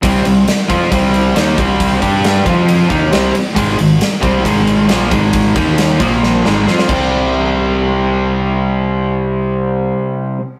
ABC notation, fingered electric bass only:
X:1
M:4/4
L:1/8
Q:1/4=136
K:Cm
V:1 name="Fingered electric bass" clef=bass
C,, C,, z F,, C,,2 E,, C,,- | C,, G,,2 F,,2 E,, C,, z | A,,, A,,, z C,, A,,,2 B,,, A,,,- | A,,, E,,2 B,,,2 A,,, F,, C,,- |
C,,8- | C,,8 |]